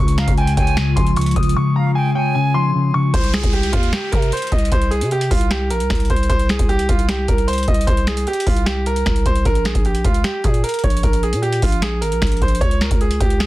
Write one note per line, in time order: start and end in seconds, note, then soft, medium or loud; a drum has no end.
0.00 0.26 C#2 loud
0.00 0.76 C#3 medium
0.00 3.11 C#3 medium
0.00 3.11 G#3 medium
0.00 3.11 F4 medium
0.00 0.14 C#6 loud
0.08 closed hi-hat medium
0.18 0.37 F5 medium
0.18 0.34 A#5 medium
0.18 finger snap medium
0.18 snare loud
0.18 closed hi-hat medium
0.28 0.56 C#2 loud
0.28 kick loud
0.28 closed hi-hat medium
0.37 0.56 G5 medium
0.37 0.54 G#5 medium
0.37 closed hi-hat soft
0.47 closed hi-hat medium
0.57 0.95 C#2 loud
0.57 1.56 C#5 medium
0.57 0.74 G5 medium
0.57 1.13 G#5 loud
0.57 kick loud
0.57 closed hi-hat medium
0.67 closed hi-hat medium
0.77 1.15 C#3 medium
0.77 0.93 G#5 medium
0.77 finger snap loud
0.77 snare loud
0.77 closed hi-hat medium
0.96 1.35 C#2 loud
0.96 1.95 F3 medium
0.96 1.13 C6 medium
0.96 kick loud
0.96 closed hi-hat medium
1.07 closed hi-hat medium
1.16 1.35 C#3 medium
1.16 1.33 C#6 medium
1.16 closed hi-hat medium
1.21 closed hi-hat medium
1.26 closed hi-hat medium
1.31 closed hi-hat soft
1.36 1.55 C#2 loud
1.36 1.55 C#3 medium
1.36 1.53 D#6 medium
1.36 kick loud
1.36 closed hi-hat soft
1.43 closed hi-hat medium
1.49 closed hi-hat medium
1.56 2.34 C#3 loud
1.56 1.73 C#6 medium
1.76 1.95 F5 medium
1.76 1.92 A#5 medium
1.95 2.14 G5 medium
1.95 2.12 G#5 medium
2.15 3.14 C#5 loud
2.15 2.32 G5 medium
2.15 2.71 G#5 medium
2.35 2.73 C#3 medium
2.35 2.52 G#5 medium
2.54 3.14 F3 medium
2.54 2.92 C6 medium
2.75 2.93 C#3 medium
2.94 3.14 C#3 medium
2.94 3.11 C#6 medium
3.14 3.42 C2 loud
3.14 3.30 C5 medium
3.14 kick loud
3.14 closed hi-hat medium
3.14 downlifter medium
3.24 closed hi-hat medium
3.34 3.50 G#4 medium
3.34 finger snap medium
3.34 snare medium
3.34 closed hi-hat medium
3.43 3.72 C2 loud
3.43 kick loud
3.43 closed hi-hat medium
3.53 3.70 G4 medium
3.53 closed hi-hat soft
3.63 closed hi-hat medium
3.72 3.92 D#2 loud
3.72 3.89 F4 medium
3.72 kick medium
3.72 closed hi-hat medium
3.83 closed hi-hat medium
3.93 4.09 G4 medium
3.93 finger snap medium
3.93 snare loud
3.93 closed hi-hat medium
4.12 4.32 C3 loud
4.12 4.29 A#4 medium
4.12 kick loud
4.12 closed hi-hat medium
4.22 closed hi-hat medium
4.32 4.49 C5 medium
4.32 closed hi-hat medium
4.37 closed hi-hat medium
4.42 closed hi-hat medium
4.47 closed hi-hat soft
4.52 4.71 C2 loud
4.52 4.69 D#5 medium
4.52 kick medium
4.52 closed hi-hat soft
4.59 closed hi-hat medium
4.65 closed hi-hat medium
4.72 5.03 C2 loud
4.72 4.89 C5 medium
4.72 kick loud
4.72 closed hi-hat medium
4.82 closed hi-hat medium
4.91 5.08 G#4 medium
4.91 closed hi-hat medium
5.01 5.29 C3 loud
5.01 closed hi-hat medium
5.11 5.28 G4 medium
5.11 closed hi-hat soft
5.21 closed hi-hat medium
5.31 5.72 C2 loud
5.31 5.47 F4 medium
5.31 kick medium
5.31 open hi-hat medium
5.41 closed hi-hat medium
5.51 5.67 G4 medium
5.51 finger snap loud
5.51 snare loud
5.51 closed hi-hat medium
5.70 5.82 A#1 medium
5.70 6.07 A#4 medium
5.70 closed hi-hat medium
5.80 5.90 C2 loud
5.80 closed hi-hat medium
5.90 6.09 C2 loud
5.90 finger snap medium
5.90 kick medium
5.90 snare medium
5.90 closed hi-hat medium
5.95 closed hi-hat medium
6.00 closed hi-hat medium
6.05 closed hi-hat soft
6.10 6.29 C2 loud
6.10 6.27 C5 medium
6.10 kick medium
6.10 closed hi-hat soft
6.16 closed hi-hat medium
6.23 closed hi-hat medium
6.29 6.58 C2 loud
6.29 6.46 C5 loud
6.29 kick loud
6.29 closed hi-hat medium
6.39 closed hi-hat medium
6.49 6.66 G#4 medium
6.49 finger snap medium
6.49 snare medium
6.49 closed hi-hat soft
6.59 6.88 C2 loud
6.59 kick loud
6.59 closed hi-hat medium
6.69 6.86 G4 medium
6.69 closed hi-hat soft
6.79 closed hi-hat medium
6.89 7.27 C2 loud
6.89 7.06 F4 medium
6.89 kick loud
6.89 closed hi-hat medium
6.99 closed hi-hat medium
7.09 7.26 G4 medium
7.09 finger snap loud
7.09 snare loud
7.09 closed hi-hat medium
7.28 7.66 C2 loud
7.28 7.45 A#4 medium
7.28 kick loud
7.28 closed hi-hat medium
7.38 closed hi-hat medium
7.48 7.64 C5 medium
7.48 closed hi-hat medium
7.53 closed hi-hat medium
7.58 closed hi-hat medium
7.63 closed hi-hat soft
7.68 7.87 C2 loud
7.68 7.85 D#5 medium
7.68 kick medium
7.68 closed hi-hat soft
7.74 closed hi-hat medium
7.81 closed hi-hat medium
7.87 8.25 C2 loud
7.87 8.04 C5 medium
7.87 kick loud
7.87 closed hi-hat medium
7.97 closed hi-hat medium
8.07 8.24 G#4 medium
8.07 finger snap medium
8.07 snare medium
8.07 closed hi-hat medium
8.17 closed hi-hat medium
8.27 8.44 G4 medium
8.27 closed hi-hat soft
8.33 closed hi-hat medium
8.40 closed hi-hat medium
8.47 9.04 C2 loud
8.47 8.64 F4 medium
8.47 kick loud
8.47 open hi-hat medium
8.56 closed hi-hat medium
8.66 8.83 G4 medium
8.66 finger snap loud
8.66 snare loud
8.66 closed hi-hat medium
8.86 9.23 A#4 medium
8.86 closed hi-hat medium
8.96 closed hi-hat medium
9.06 9.25 C2 loud
9.06 finger snap medium
9.06 kick loud
9.06 snare medium
9.06 closed hi-hat medium
9.16 closed hi-hat medium
9.26 9.45 C2 loud
9.26 9.43 C5 medium
9.26 kick medium
9.26 closed hi-hat medium
9.35 closed hi-hat medium
9.45 9.74 A#1 loud
9.45 9.62 A#4 medium
9.45 kick loud
9.45 closed hi-hat medium
9.55 closed hi-hat medium
9.65 9.82 G#4 medium
9.65 finger snap medium
9.65 snare medium
9.65 closed hi-hat medium
9.75 10.03 A#1 loud
9.75 kick loud
9.75 closed hi-hat medium
9.85 10.02 G4 medium
9.85 closed hi-hat soft
9.95 closed hi-hat medium
10.05 10.24 C#2 loud
10.05 10.21 F4 medium
10.05 kick loud
10.05 closed hi-hat medium
10.14 closed hi-hat medium
10.24 10.41 G4 medium
10.24 finger snap medium
10.24 snare loud
10.24 closed hi-hat medium
10.44 10.63 A#2 loud
10.44 10.61 G#4 medium
10.44 kick loud
10.44 closed hi-hat medium
10.54 closed hi-hat medium
10.64 10.80 A#4 medium
10.64 closed hi-hat medium
10.69 closed hi-hat medium
10.74 closed hi-hat medium
10.79 closed hi-hat soft
10.84 11.03 A#1 loud
10.84 11.00 C#5 medium
10.84 kick medium
10.84 closed hi-hat soft
10.90 closed hi-hat medium
10.97 closed hi-hat medium
11.03 11.34 A#1 loud
11.03 11.20 A#4 medium
11.03 kick loud
11.03 closed hi-hat medium
11.13 closed hi-hat medium
11.23 11.40 G#4 medium
11.23 closed hi-hat medium
11.33 11.61 A#2 loud
11.33 closed hi-hat medium
11.42 11.59 G4 medium
11.42 closed hi-hat soft
11.53 closed hi-hat medium
11.62 12.03 A#1 loud
11.62 11.80 F4 medium
11.62 kick loud
11.62 open hi-hat medium
11.72 closed hi-hat medium
11.82 11.99 G#4 medium
11.82 finger snap loud
11.82 snare loud
11.82 closed hi-hat medium
12.01 12.13 G#1 medium
12.01 12.39 A#4 medium
12.01 closed hi-hat medium
12.12 12.21 A#1 loud
12.12 closed hi-hat medium
12.22 12.41 A#1 loud
12.22 finger snap medium
12.22 kick loud
12.22 snare medium
12.22 closed hi-hat medium
12.27 closed hi-hat medium
12.32 closed hi-hat medium
12.37 closed hi-hat soft
12.41 12.60 A#1 loud
12.41 12.59 C5 medium
12.41 kick medium
12.41 closed hi-hat soft
12.48 closed hi-hat medium
12.55 closed hi-hat medium
12.61 12.90 C#2 loud
12.61 12.78 C#5 loud
12.61 kick loud
12.61 closed hi-hat medium
12.71 closed hi-hat medium
12.81 12.98 A#4 medium
12.81 finger snap medium
12.81 snare loud
12.81 closed hi-hat medium
12.91 13.19 C#2 loud
12.91 kick loud
12.91 closed hi-hat medium
13.01 13.18 G#4 medium
13.01 closed hi-hat soft
13.11 closed hi-hat medium
13.20 13.46 C#2 loud
13.20 13.37 G4 medium
13.20 kick loud
13.20 closed hi-hat medium
13.30 closed hi-hat medium
13.40 13.46 G#4 medium
13.40 finger snap medium
13.40 snare loud
13.40 closed hi-hat medium